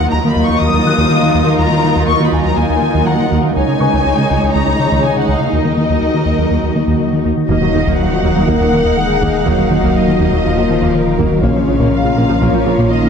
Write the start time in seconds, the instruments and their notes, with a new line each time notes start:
Already playing: cello section D#2, viola section F#3 D#4, ambient pad F#3 D#4 A#4 D#5, violin section F4 A#4 F#5
0.00 analog synth bass D#2, synth pluck D#3
0.11 analog synth bass D#2, violin section A#5, grand piano A#5
0.24 analog synth bass D#3, synth pluck A#3
0.29 violin section B5
0.36 analog synth bass D#2, synth pluck D#3
0.45 synth pluck F#3, violin section C#6
0.50 analog synth bass D#2
0.61 analog synth bass D#2, synth pluck D#3, violin section D#6
0.73 analog synth bass D#2, synth pluck F#3
0.85 analog synth bass D#3, synth pluck A#3, grand piano F#6
0.98 analog synth bass D#2, synth pluck D#3
1.11 analog synth bass D#3
1.23 analog synth bass D#3
1.35 analog synth bass D#2, synth pluck D#3
1.47 analog synth bass D#3
1.59 analog synth bass D#2, synth pluck D#3, violin section A#5
1.71 analog synth bass D#3, synth pluck A#3
1.84 analog synth bass D#3, synth pluck A#3
1.96 analog synth bass D#2, synth pluck D#3
2.08 analog synth bass D#2, violin section C#6
2.20 analog synth bass D#3, synth pluck A#3
2.25 violin section B5
2.33 analog synth bass D#2, synth pluck D#3, grand piano G#5
2.42 analog synth bass D#2, synth pluck F#3, violin section A#5
2.57 analog synth bass D#2, synth pluck D#3, violin section G#5
2.70 analog synth bass D#2, synth pluck F#3
2.82 analog synth bass D#3, synth pluck A#3
2.94 analog synth bass D#2, synth pluck D#3
3.06 analog synth bass D#3, grand piano F4 A#5, violin section F#5
3.20 analog synth bass D#3
3.31 analog synth bass D#2, synth pluck D#3
3.44 analog synth bass D#3
3.55 cello section C#2, analog synth bass C#2, synth pluck C#3, ambient pad D#3 G#4 D#5, viola section G#3 D#4, violin section D#4 C#5 G#5
3.68 analog synth bass C#3, synth pluck C#4
3.80 analog synth bass C#3, synth pluck C#4, grand piano B4 C#6
3.93 analog synth bass C#2, synth pluck C#3
4.06 analog synth bass C#2
4.17 analog synth bass C#3, synth pluck C#4
4.28 analog synth bass C#2, synth pluck C#3, grand piano G#5
4.42 analog synth bass C#2, synth pluck G#3
4.54 analog synth bass C#2, synth pluck C#3, violin section A#5
4.67 analog synth bass C#2, synth pluck G#3
4.79 analog synth bass C#3, synth pluck C#4
4.92 analog synth bass C#2, synth pluck C#3
5.03 analog synth bass C#3, violin section G#5
5.16 analog synth bass C#3, violin section F#5
5.29 analog synth bass C#2, synth pluck C#3
5.36 violin section F5
5.41 analog synth bass C#3
5.52 cello section D#2, analog synth bass D#2, synth pluck D#3, viola section F#3, ambient pad D#4 F#4, violin section A#4 D#5
5.65 analog synth bass D#3, synth pluck A#3
5.77 analog synth bass D#3, synth pluck A#3
5.90 analog synth bass D#2, synth pluck D#3
6.02 analog synth bass D#2
6.14 analog synth bass D#3, synth pluck A#3
6.26 analog synth bass D#2, synth pluck D#3
6.39 analog synth bass D#2, synth pluck F#3
6.51 analog synth bass D#2, synth pluck D#3
6.63 analog synth bass D#2, synth pluck F#3
6.75 analog synth bass D#3, synth pluck A#3
6.88 analog synth bass D#2, synth pluck D#3
7.00 analog synth bass D#3
7.13 analog synth bass D#3
7.25 analog synth bass D#2, synth pluck D#3
7.37 analog synth bass D#3
7.48 detuned saw bass D#1, double bass section D#2, analog synth bass D#2, tuba D#2, synth pluck D#3, ambient pad D#3 A#3 A#4 D#5, cello section F#3, viola section A#3 D#4, french horn section F#4, violin section D#5 F5, taiko
7.61 double bass section D#2, analog synth bass D#3, viola section F#3, synth pluck A#3
7.74 double bass section D#2, tuba D#2, analog synth bass D#3, viola section F3, synth pluck A#3
7.86 double bass section D#2, analog synth bass D#2, synth pluck D#3, viola section A#3, taiko
7.99 analog synth bass D#2, violin section F#5
8.11 double bass section D#2, analog synth bass D#3, viola section F3, synth pluck A#3
8.23 tuba D#2, double bass section D#2, analog synth bass D#2, synth pluck D#3, viola section A#3
8.35 double bass section D#2, analog synth bass D#2, synth pluck F#3, viola section F#3
8.47 tuba D#2, double bass section D#2, analog synth bass D#2, synth pluck D#3, cello section A#3, viola section A#3, grand piano D#4 D#5, french horn section A#4, taiko
8.60 double bass section D#2, analog synth bass D#2, synth pluck F#3, viola section F#3
8.71 double bass section D#2, tuba D#2, analog synth bass D#3, viola section F3, synth pluck A#3
8.84 double bass section D#2, analog synth bass D#2, viola section A#3
8.96 analog synth bass D#3, cello section G#3, french horn section G#4
9.10 analog synth bass D#3
9.21 double bass section D#2, tuba D#2, analog synth bass D#2, synth pluck D#3, viola section A#3, taiko
9.34 analog synth bass D#3
9.45 double bass section D#2, analog synth bass D#2, tuba D#2, synth pluck D#3, cello section F#3, viola section A#3, french horn section F#4, grand piano C#5, taiko
9.58 double bass section D#2, analog synth bass D#3, viola section F#3, synth pluck A#3
9.70 double bass section D#2, tuba D#2, analog synth bass D#3, viola section F3, synth pluck A#3
9.83 double bass section D#2, analog synth bass D#2, synth pluck D#3, viola section A#3, taiko
9.95 analog synth bass D#2, violin section D#5
10.07 double bass section D#2, analog synth bass D#3, viola section F3, synth pluck A#3
10.20 double bass section D#2, tuba D#2, analog synth bass D#2, synth pluck D#3, viola section A#3
10.32 double bass section D#2, analog synth bass D#2, viola section F#3, synth pluck F#3
10.44 double bass section D#2, tuba D#2, analog synth bass D#2, synth pluck D#3, cello section F3, viola section A#3, french horn section F4, taiko
10.56 double bass section D#2, analog synth bass D#2, viola section F#3, synth pluck F#3
10.69 double bass section D#2, tuba D#2, analog synth bass D#3, viola section F3, synth pluck A#3
10.81 double bass section D#2, analog synth bass D#2, synth pluck D#3, viola section A#3
10.94 analog synth bass D#3, violin section A#4
11.07 analog synth bass D#3
11.17 double bass section D#2, tuba D#2, analog synth bass D#2, synth pluck D#3, cello section F#3, viola section A#3, french horn section F#4, taiko
11.31 analog synth bass D#3
11.42 double bass section A#1, detuned saw bass A#1, tuba A#1, analog synth bass A#2, cello section C#3, ambient pad F3 C#4 F5 A#5, viola section A#3 F4, synth pluck A#3, french horn section C#4, violin section C#5 F5, taiko
11.55 double bass section A#1, viola section F3, analog synth bass A#3, synth pluck F4
11.67 double bass section A#1, tuba A#1, viola section C#3, analog synth bass A#3, synth pluck F4
11.80 double bass section A#1, analog synth bass A#2, viola section A#3, synth pluck A#3, taiko
11.92 analog synth bass A#2, violin section F5
12.04 double bass section A#1, viola section C#3, analog synth bass A#3, synth pluck F4
12.17 tuba A#1, double bass section A#1, analog synth bass A#2, viola section A#3, synth pluck A#3
12.29 double bass section A#1, analog synth bass A#2, viola section F3, synth pluck C#4
12.41 double bass section A#1, tuba A#1, analog synth bass A#2, cello section F3, viola section A#3, synth pluck A#3, grand piano A#3 A#4, french horn section F4, violin section C#5, taiko
12.54 double bass section A#1, analog synth bass A#2, viola section F3, synth pluck C#4
12.66 double bass section A#1, tuba A#1, viola section C#3, analog synth bass A#3, synth pluck F4
12.78 double bass section A#1, analog synth bass A#2, synth pluck A#3, viola section A#3
12.90 cello section D#3, analog synth bass A#3, french horn section D#4, violin section D#5
13.03 analog synth bass A#3